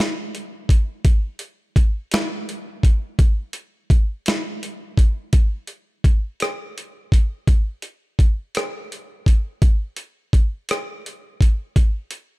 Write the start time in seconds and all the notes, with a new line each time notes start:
0.00 snare
0.35 closed hi-hat
0.69 kick, closed hi-hat
1.05 kick, closed hi-hat
1.39 closed hi-hat
1.76 kick, closed hi-hat
2.12 snare, closed hi-hat
2.49 closed hi-hat
2.83 kick, closed hi-hat
3.19 kick, closed hi-hat
3.53 closed hi-hat
3.90 kick, closed hi-hat
4.26 snare, closed hi-hat
4.63 closed hi-hat
4.97 kick, closed hi-hat
5.33 kick, closed hi-hat
5.67 closed hi-hat
6.04 kick, closed hi-hat
6.40 cross-stick, closed hi-hat
6.78 closed hi-hat
7.12 kick, closed hi-hat
7.47 kick, closed hi-hat
7.82 closed hi-hat
8.19 kick, closed hi-hat
8.55 cross-stick, closed hi-hat
8.92 closed hi-hat
9.26 kick, closed hi-hat
9.62 kick, closed hi-hat
9.96 closed hi-hat
10.33 kick, closed hi-hat
10.69 cross-stick, closed hi-hat
11.06 closed hi-hat
11.41 kick, closed hi-hat
11.76 kick, closed hi-hat
12.11 closed hi-hat